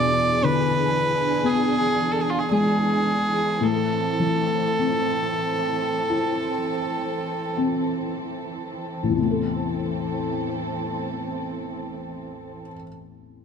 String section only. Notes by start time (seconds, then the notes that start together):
Already playing: E3 D4 G#4
3.62 C4 A4
9.18 E3 C4 A4